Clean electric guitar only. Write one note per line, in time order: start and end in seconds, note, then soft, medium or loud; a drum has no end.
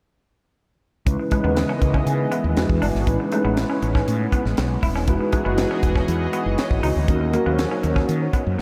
1.19 muted clean electric guitar stroke soft
1.32 1.41 G#3 medium
1.44 1.54 B3 medium
1.69 1.79 C#4 medium
1.82 muted clean electric guitar stroke soft
1.94 2.04 C#4 medium
2.32 2.41 B3 medium
2.82 2.91 D4 medium
3.20 muted clean electric guitar stroke soft
3.33 3.42 A3 medium
3.45 3.54 B3 medium
3.70 3.79 C#4 medium
3.83 muted clean electric guitar stroke soft
3.95 4.04 C#4 medium
4.33 4.42 B3 medium
4.58 muted clean electric guitar stroke soft
4.83 4.92 E4 medium
4.96 5.05 C#4 medium
5.21 muted clean electric guitar stroke soft
5.33 5.42 G#3 medium
5.45 5.55 B3 medium
5.71 5.80 C#4 medium
5.83 muted clean electric guitar stroke soft
5.96 6.05 C#4 medium
6.33 6.43 B3 medium
6.83 6.93 D#4 medium
7.21 muted clean electric guitar stroke soft
7.34 7.43 A#3 medium
7.46 7.56 B3 medium
7.71 7.81 C#4 medium
7.83 muted clean electric guitar stroke soft
7.96 8.05 C#4 medium
8.34 8.43 B3 medium
8.58 muted clean electric guitar stroke soft